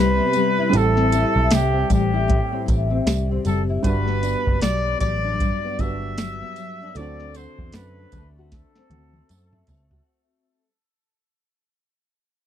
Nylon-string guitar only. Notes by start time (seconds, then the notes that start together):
Already playing: C3 G3 B3 E4
0.20 B3
0.35 G3
0.59 E4
0.73 A2
0.96 C4
1.13 E4
1.36 C4
1.51 G3
1.73 C4
1.89 G3
2.14 E4
2.28 A2
2.52 C4
2.66 E4
2.90 C4
3.06 G3
3.31 C4
3.45 G3
3.69 E4
3.83 G2
4.07 B3
4.22 D4
4.46 B3
4.62 F#3
4.85 B3
5.01 F#3
5.24 D4
5.40 G2
5.64 B3
5.80 D4
6.01 B3
6.18 F#3
6.41 B3
6.58 F#3
6.82 D4
6.96 D3
7.20 C4
7.36 F#4
7.59 C4
7.75 A3
7.98 C4
8.15 A3
8.38 F#4
8.77 C4
8.92 F#4
9.16 C4
9.30 A3
9.54 C4
9.70 A3
9.92 F#4